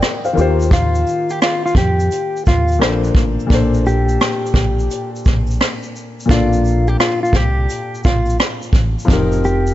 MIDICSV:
0, 0, Header, 1, 5, 480
1, 0, Start_track
1, 0, Key_signature, -2, "major"
1, 0, Tempo, 697674
1, 491, Time_signature, 4, 2, 24, 8
1, 6702, End_track
2, 0, Start_track
2, 0, Title_t, "Clean electric guitar"
2, 0, Program_c, 0, 27
2, 504, Note_on_c, 0, 65, 91
2, 898, Note_off_c, 0, 65, 0
2, 898, Note_on_c, 0, 67, 73
2, 970, Note_off_c, 0, 67, 0
2, 986, Note_on_c, 0, 65, 76
2, 1118, Note_off_c, 0, 65, 0
2, 1139, Note_on_c, 0, 65, 80
2, 1210, Note_off_c, 0, 65, 0
2, 1222, Note_on_c, 0, 67, 76
2, 1669, Note_off_c, 0, 67, 0
2, 1705, Note_on_c, 0, 65, 75
2, 1915, Note_off_c, 0, 65, 0
2, 2660, Note_on_c, 0, 67, 72
2, 3503, Note_off_c, 0, 67, 0
2, 4340, Note_on_c, 0, 65, 97
2, 4734, Note_off_c, 0, 65, 0
2, 4734, Note_on_c, 0, 67, 72
2, 4807, Note_off_c, 0, 67, 0
2, 4819, Note_on_c, 0, 65, 79
2, 4954, Note_off_c, 0, 65, 0
2, 4974, Note_on_c, 0, 65, 81
2, 5060, Note_off_c, 0, 65, 0
2, 5060, Note_on_c, 0, 67, 72
2, 5508, Note_off_c, 0, 67, 0
2, 5542, Note_on_c, 0, 65, 73
2, 5753, Note_off_c, 0, 65, 0
2, 6501, Note_on_c, 0, 67, 74
2, 6702, Note_off_c, 0, 67, 0
2, 6702, End_track
3, 0, Start_track
3, 0, Title_t, "Felt piano"
3, 0, Program_c, 1, 0
3, 0, Control_c, 1, 64, 127
3, 0, Note_on_c, 1, 53, 78
3, 0, Note_on_c, 1, 60, 74
3, 0, Note_on_c, 1, 63, 74
3, 0, Note_on_c, 1, 67, 79
3, 0, Note_on_c, 1, 70, 55
3, 0, Note_on_c, 1, 74, 58
3, 0, Note_on_c, 1, 75, 65
3, 0, Note_on_c, 1, 79, 69
3, 155, Note_off_c, 1, 79, 0
3, 158, Note_off_c, 1, 74, 0
3, 170, Note_on_c, 1, 77, 64
3, 174, Note_on_c, 1, 72, 54
3, 211, Note_off_c, 1, 53, 0
3, 218, Note_off_c, 1, 60, 0
3, 225, Note_off_c, 1, 63, 0
3, 228, Note_on_c, 1, 51, 76
3, 232, Note_off_c, 1, 67, 0
3, 242, Note_on_c, 1, 58, 72
3, 255, Note_on_c, 1, 65, 72
3, 260, Control_c, 1, 64, 0
3, 263, Note_off_c, 1, 75, 0
3, 266, Note_off_c, 1, 70, 0
3, 269, Note_on_c, 1, 67, 76
3, 271, Note_off_c, 1, 72, 0
3, 282, Note_on_c, 1, 72, 89
3, 378, Control_c, 1, 64, 127
3, 396, Note_off_c, 1, 77, 0
3, 1892, Note_off_c, 1, 51, 0
3, 1899, Note_off_c, 1, 58, 0
3, 1906, Note_off_c, 1, 65, 0
3, 1912, Note_off_c, 1, 67, 0
3, 1919, Note_off_c, 1, 72, 0
3, 1920, Note_on_c, 1, 46, 68
3, 1926, Note_on_c, 1, 58, 64
3, 1933, Note_on_c, 1, 62, 58
3, 1940, Control_c, 1, 64, 0
3, 1940, Note_on_c, 1, 69, 64
3, 1947, Note_on_c, 1, 72, 73
3, 2065, Control_c, 1, 64, 127
3, 2375, Note_off_c, 1, 46, 0
3, 2385, Note_on_c, 1, 46, 78
3, 2389, Note_off_c, 1, 58, 0
3, 2399, Note_on_c, 1, 58, 71
3, 2401, Note_off_c, 1, 62, 0
3, 2412, Note_on_c, 1, 62, 73
3, 2414, Note_off_c, 1, 69, 0
3, 2419, Note_off_c, 1, 72, 0
3, 2420, Control_c, 1, 64, 0
3, 2425, Note_on_c, 1, 69, 73
3, 2439, Note_on_c, 1, 72, 92
3, 2561, Control_c, 1, 64, 127
3, 4291, Note_off_c, 1, 46, 0
3, 4298, Note_off_c, 1, 58, 0
3, 4304, Note_off_c, 1, 62, 0
3, 4304, Note_on_c, 1, 46, 67
3, 4311, Note_off_c, 1, 69, 0
3, 4318, Note_off_c, 1, 72, 0
3, 4318, Note_on_c, 1, 58, 60
3, 4331, Note_on_c, 1, 62, 61
3, 4345, Note_on_c, 1, 69, 61
3, 4358, Note_on_c, 1, 74, 75
3, 6210, Note_off_c, 1, 46, 0
3, 6217, Note_off_c, 1, 58, 0
3, 6224, Note_off_c, 1, 62, 0
3, 6226, Note_on_c, 1, 53, 79
3, 6230, Note_off_c, 1, 69, 0
3, 6237, Note_off_c, 1, 74, 0
3, 6239, Note_on_c, 1, 60, 77
3, 6254, Note_on_c, 1, 63, 79
3, 6259, Control_c, 1, 64, 0
3, 6267, Note_on_c, 1, 67, 73
3, 6281, Note_on_c, 1, 70, 89
3, 6391, Control_c, 1, 64, 127
3, 6702, Note_off_c, 1, 53, 0
3, 6702, Note_off_c, 1, 60, 0
3, 6702, Note_off_c, 1, 63, 0
3, 6702, Note_off_c, 1, 67, 0
3, 6702, Note_off_c, 1, 70, 0
3, 6702, End_track
4, 0, Start_track
4, 0, Title_t, "Fingered electric bass"
4, 0, Program_c, 2, 33
4, 259, Note_on_c, 2, 39, 96
4, 708, Note_off_c, 2, 39, 0
4, 1207, Note_on_c, 2, 41, 104
4, 1431, Note_off_c, 2, 41, 0
4, 1703, Note_on_c, 2, 39, 95
4, 1939, Note_off_c, 2, 39, 0
4, 1939, Note_on_c, 2, 34, 89
4, 2158, Note_off_c, 2, 34, 0
4, 2168, Note_on_c, 2, 33, 82
4, 2312, Note_off_c, 2, 33, 0
4, 2413, Note_on_c, 2, 34, 109
4, 2864, Note_off_c, 2, 34, 0
4, 3126, Note_on_c, 2, 34, 101
4, 3351, Note_off_c, 2, 34, 0
4, 3623, Note_on_c, 2, 34, 86
4, 3840, Note_off_c, 2, 34, 0
4, 4333, Note_on_c, 2, 34, 105
4, 4785, Note_off_c, 2, 34, 0
4, 5046, Note_on_c, 2, 36, 86
4, 5271, Note_off_c, 2, 36, 0
4, 5542, Note_on_c, 2, 34, 91
4, 5760, Note_off_c, 2, 34, 0
4, 6009, Note_on_c, 2, 33, 93
4, 6153, Note_off_c, 2, 33, 0
4, 6253, Note_on_c, 2, 29, 102
4, 6702, Note_off_c, 2, 29, 0
4, 6702, End_track
5, 0, Start_track
5, 0, Title_t, "Drums"
5, 14, Note_on_c, 9, 82, 60
5, 17, Note_on_c, 9, 37, 96
5, 26, Note_off_c, 9, 82, 0
5, 26, Note_on_c, 9, 42, 59
5, 26, Note_on_c, 9, 82, 56
5, 86, Note_off_c, 9, 37, 0
5, 95, Note_off_c, 9, 42, 0
5, 95, Note_off_c, 9, 82, 0
5, 169, Note_on_c, 9, 82, 47
5, 238, Note_off_c, 9, 82, 0
5, 256, Note_on_c, 9, 82, 43
5, 260, Note_off_c, 9, 82, 0
5, 260, Note_on_c, 9, 82, 46
5, 329, Note_off_c, 9, 82, 0
5, 410, Note_on_c, 9, 82, 44
5, 425, Note_off_c, 9, 82, 0
5, 425, Note_on_c, 9, 82, 57
5, 490, Note_on_c, 9, 36, 112
5, 492, Note_off_c, 9, 82, 0
5, 492, Note_on_c, 9, 82, 61
5, 502, Note_off_c, 9, 82, 0
5, 502, Note_on_c, 9, 42, 82
5, 502, Note_on_c, 9, 82, 82
5, 558, Note_off_c, 9, 36, 0
5, 571, Note_off_c, 9, 42, 0
5, 571, Note_off_c, 9, 82, 0
5, 652, Note_on_c, 9, 82, 49
5, 721, Note_off_c, 9, 82, 0
5, 734, Note_on_c, 9, 82, 54
5, 748, Note_off_c, 9, 82, 0
5, 748, Note_on_c, 9, 82, 47
5, 817, Note_off_c, 9, 82, 0
5, 889, Note_on_c, 9, 82, 46
5, 892, Note_off_c, 9, 82, 0
5, 892, Note_on_c, 9, 82, 44
5, 961, Note_off_c, 9, 82, 0
5, 975, Note_on_c, 9, 82, 67
5, 976, Note_on_c, 9, 37, 111
5, 982, Note_off_c, 9, 82, 0
5, 982, Note_on_c, 9, 42, 63
5, 982, Note_on_c, 9, 82, 65
5, 1045, Note_off_c, 9, 37, 0
5, 1051, Note_off_c, 9, 42, 0
5, 1051, Note_off_c, 9, 82, 0
5, 1148, Note_on_c, 9, 82, 43
5, 1203, Note_on_c, 9, 36, 86
5, 1217, Note_off_c, 9, 82, 0
5, 1217, Note_on_c, 9, 82, 54
5, 1222, Note_off_c, 9, 82, 0
5, 1222, Note_on_c, 9, 82, 44
5, 1272, Note_off_c, 9, 36, 0
5, 1291, Note_off_c, 9, 82, 0
5, 1372, Note_on_c, 9, 82, 50
5, 1377, Note_off_c, 9, 82, 0
5, 1377, Note_on_c, 9, 82, 43
5, 1446, Note_off_c, 9, 82, 0
5, 1453, Note_on_c, 9, 82, 71
5, 1457, Note_off_c, 9, 82, 0
5, 1457, Note_on_c, 9, 42, 62
5, 1457, Note_on_c, 9, 82, 67
5, 1526, Note_off_c, 9, 42, 0
5, 1526, Note_off_c, 9, 82, 0
5, 1628, Note_on_c, 9, 82, 49
5, 1690, Note_off_c, 9, 82, 0
5, 1690, Note_on_c, 9, 82, 50
5, 1696, Note_off_c, 9, 82, 0
5, 1696, Note_on_c, 9, 82, 45
5, 1699, Note_on_c, 9, 36, 100
5, 1765, Note_off_c, 9, 82, 0
5, 1768, Note_off_c, 9, 36, 0
5, 1843, Note_on_c, 9, 82, 49
5, 1869, Note_off_c, 9, 82, 0
5, 1869, Note_on_c, 9, 82, 48
5, 1937, Note_off_c, 9, 82, 0
5, 1937, Note_on_c, 9, 37, 101
5, 1938, Note_on_c, 9, 82, 58
5, 1946, Note_off_c, 9, 82, 0
5, 1946, Note_on_c, 9, 42, 59
5, 1946, Note_on_c, 9, 82, 59
5, 2006, Note_off_c, 9, 37, 0
5, 2015, Note_off_c, 9, 42, 0
5, 2015, Note_off_c, 9, 82, 0
5, 2091, Note_on_c, 9, 82, 47
5, 2160, Note_off_c, 9, 82, 0
5, 2165, Note_on_c, 9, 36, 97
5, 2179, Note_on_c, 9, 82, 44
5, 2181, Note_off_c, 9, 82, 0
5, 2181, Note_on_c, 9, 82, 44
5, 2233, Note_off_c, 9, 36, 0
5, 2250, Note_off_c, 9, 82, 0
5, 2336, Note_on_c, 9, 82, 47
5, 2405, Note_off_c, 9, 82, 0
5, 2409, Note_on_c, 9, 36, 111
5, 2416, Note_on_c, 9, 82, 62
5, 2421, Note_off_c, 9, 82, 0
5, 2421, Note_on_c, 9, 42, 77
5, 2421, Note_on_c, 9, 82, 71
5, 2478, Note_off_c, 9, 36, 0
5, 2490, Note_off_c, 9, 42, 0
5, 2490, Note_off_c, 9, 82, 0
5, 2573, Note_on_c, 9, 82, 46
5, 2641, Note_off_c, 9, 82, 0
5, 2657, Note_on_c, 9, 82, 50
5, 2668, Note_off_c, 9, 82, 0
5, 2668, Note_on_c, 9, 82, 47
5, 2737, Note_off_c, 9, 82, 0
5, 2812, Note_on_c, 9, 82, 45
5, 2880, Note_off_c, 9, 82, 0
5, 2895, Note_on_c, 9, 82, 70
5, 2897, Note_on_c, 9, 37, 107
5, 2903, Note_off_c, 9, 82, 0
5, 2903, Note_on_c, 9, 42, 59
5, 2903, Note_on_c, 9, 82, 64
5, 2966, Note_off_c, 9, 37, 0
5, 2971, Note_off_c, 9, 42, 0
5, 2971, Note_off_c, 9, 82, 0
5, 3068, Note_on_c, 9, 82, 45
5, 3123, Note_on_c, 9, 36, 82
5, 3137, Note_off_c, 9, 82, 0
5, 3138, Note_on_c, 9, 82, 57
5, 3141, Note_off_c, 9, 82, 0
5, 3141, Note_on_c, 9, 82, 45
5, 3191, Note_off_c, 9, 36, 0
5, 3210, Note_off_c, 9, 82, 0
5, 3296, Note_on_c, 9, 82, 41
5, 3364, Note_off_c, 9, 82, 0
5, 3373, Note_on_c, 9, 82, 70
5, 3378, Note_off_c, 9, 82, 0
5, 3378, Note_on_c, 9, 42, 64
5, 3378, Note_on_c, 9, 82, 61
5, 3447, Note_off_c, 9, 42, 0
5, 3447, Note_off_c, 9, 82, 0
5, 3548, Note_on_c, 9, 82, 47
5, 3610, Note_off_c, 9, 82, 0
5, 3610, Note_on_c, 9, 82, 51
5, 3616, Note_off_c, 9, 82, 0
5, 3616, Note_on_c, 9, 82, 42
5, 3618, Note_on_c, 9, 36, 98
5, 3684, Note_off_c, 9, 82, 0
5, 3687, Note_off_c, 9, 36, 0
5, 3761, Note_on_c, 9, 82, 49
5, 3788, Note_off_c, 9, 82, 0
5, 3788, Note_on_c, 9, 82, 47
5, 3856, Note_off_c, 9, 82, 0
5, 3856, Note_on_c, 9, 82, 56
5, 3858, Note_on_c, 9, 37, 94
5, 3867, Note_off_c, 9, 82, 0
5, 3867, Note_on_c, 9, 42, 60
5, 3867, Note_on_c, 9, 82, 59
5, 3927, Note_off_c, 9, 37, 0
5, 3936, Note_off_c, 9, 42, 0
5, 3936, Note_off_c, 9, 82, 0
5, 4010, Note_on_c, 9, 82, 45
5, 4079, Note_off_c, 9, 82, 0
5, 4095, Note_on_c, 9, 82, 41
5, 4101, Note_off_c, 9, 82, 0
5, 4101, Note_on_c, 9, 82, 45
5, 4170, Note_off_c, 9, 82, 0
5, 4265, Note_on_c, 9, 82, 52
5, 4330, Note_on_c, 9, 36, 113
5, 4332, Note_off_c, 9, 82, 0
5, 4332, Note_on_c, 9, 82, 62
5, 4343, Note_off_c, 9, 82, 0
5, 4343, Note_on_c, 9, 42, 80
5, 4343, Note_on_c, 9, 82, 76
5, 4398, Note_off_c, 9, 36, 0
5, 4412, Note_off_c, 9, 42, 0
5, 4412, Note_off_c, 9, 82, 0
5, 4492, Note_on_c, 9, 82, 48
5, 4561, Note_off_c, 9, 82, 0
5, 4572, Note_on_c, 9, 82, 49
5, 4587, Note_off_c, 9, 82, 0
5, 4587, Note_on_c, 9, 82, 47
5, 4656, Note_off_c, 9, 82, 0
5, 4730, Note_on_c, 9, 82, 46
5, 4798, Note_off_c, 9, 82, 0
5, 4816, Note_on_c, 9, 82, 72
5, 4817, Note_on_c, 9, 37, 105
5, 4822, Note_off_c, 9, 82, 0
5, 4822, Note_on_c, 9, 42, 65
5, 4822, Note_on_c, 9, 82, 61
5, 4886, Note_off_c, 9, 37, 0
5, 4891, Note_off_c, 9, 42, 0
5, 4891, Note_off_c, 9, 82, 0
5, 4988, Note_on_c, 9, 82, 42
5, 5042, Note_on_c, 9, 36, 86
5, 5054, Note_off_c, 9, 82, 0
5, 5054, Note_on_c, 9, 82, 54
5, 5060, Note_off_c, 9, 82, 0
5, 5060, Note_on_c, 9, 82, 44
5, 5111, Note_off_c, 9, 36, 0
5, 5129, Note_off_c, 9, 82, 0
5, 5292, Note_on_c, 9, 82, 70
5, 5298, Note_off_c, 9, 82, 0
5, 5298, Note_on_c, 9, 42, 61
5, 5298, Note_on_c, 9, 82, 62
5, 5366, Note_off_c, 9, 42, 0
5, 5366, Note_off_c, 9, 82, 0
5, 5467, Note_on_c, 9, 82, 44
5, 5529, Note_off_c, 9, 82, 0
5, 5529, Note_on_c, 9, 82, 54
5, 5534, Note_off_c, 9, 82, 0
5, 5534, Note_on_c, 9, 82, 47
5, 5538, Note_on_c, 9, 36, 96
5, 5603, Note_off_c, 9, 82, 0
5, 5606, Note_off_c, 9, 36, 0
5, 5680, Note_on_c, 9, 82, 46
5, 5706, Note_off_c, 9, 82, 0
5, 5706, Note_on_c, 9, 82, 48
5, 5774, Note_off_c, 9, 82, 0
5, 5774, Note_on_c, 9, 82, 59
5, 5778, Note_on_c, 9, 37, 96
5, 5787, Note_off_c, 9, 82, 0
5, 5787, Note_on_c, 9, 42, 59
5, 5787, Note_on_c, 9, 82, 57
5, 5847, Note_off_c, 9, 37, 0
5, 5856, Note_off_c, 9, 42, 0
5, 5856, Note_off_c, 9, 82, 0
5, 5931, Note_on_c, 9, 82, 45
5, 6000, Note_off_c, 9, 82, 0
5, 6004, Note_on_c, 9, 36, 92
5, 6018, Note_on_c, 9, 82, 42
5, 6020, Note_off_c, 9, 82, 0
5, 6020, Note_on_c, 9, 82, 46
5, 6073, Note_off_c, 9, 36, 0
5, 6089, Note_off_c, 9, 82, 0
5, 6185, Note_on_c, 9, 82, 54
5, 6249, Note_on_c, 9, 36, 113
5, 6254, Note_off_c, 9, 82, 0
5, 6254, Note_on_c, 9, 82, 62
5, 6264, Note_off_c, 9, 82, 0
5, 6264, Note_on_c, 9, 42, 80
5, 6264, Note_on_c, 9, 82, 82
5, 6318, Note_off_c, 9, 36, 0
5, 6333, Note_off_c, 9, 42, 0
5, 6333, Note_off_c, 9, 82, 0
5, 6412, Note_on_c, 9, 82, 48
5, 6481, Note_off_c, 9, 82, 0
5, 6495, Note_on_c, 9, 82, 54
5, 6508, Note_off_c, 9, 82, 0
5, 6508, Note_on_c, 9, 82, 48
5, 6577, Note_off_c, 9, 82, 0
5, 6649, Note_on_c, 9, 82, 49
5, 6652, Note_off_c, 9, 82, 0
5, 6652, Note_on_c, 9, 82, 44
5, 6702, Note_off_c, 9, 82, 0
5, 6702, End_track
0, 0, End_of_file